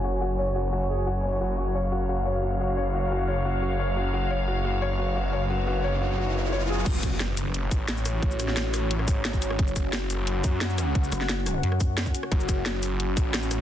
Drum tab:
CC |----------------|----------------|----------------|----------------|
HH |----------------|----------------|----------------|----------------|
SH |----------------|----------------|----------------|----------------|
SD |----------------|----------------|----------------|----------------|
BD |----------------|----------------|----------------|----------------|

CC |----------------|x---------------|----------------|----------------|
HH |----------------|x-x-x-x-x-x-x-x-|x-x-x-o-x-x-x-x-|x-x-x-x-x-x-x-x-|
SH |----------------|-xx---x---x--xx-|-xx---x---x--xx-|-xx---x---x--xx-|
SD |----------------|--r-o-------o-r-|--roo-r--r--o--r|--r-o-------o-r-|
BD |----------------|o-o-------o-----|o---------o--o--|o-o-------o-----|

CC |----------------|----------------|
HH |x-x-x-o-x-x-x-x-|x-x-x-x-x-x-x-x-|
SH |-xx---x---x--xx-|-xx---x---x--xx-|
SD |--roo-r--r--o--r|--r-o-------o-r-|
BD |o---------o--o--|o-o-------o-----|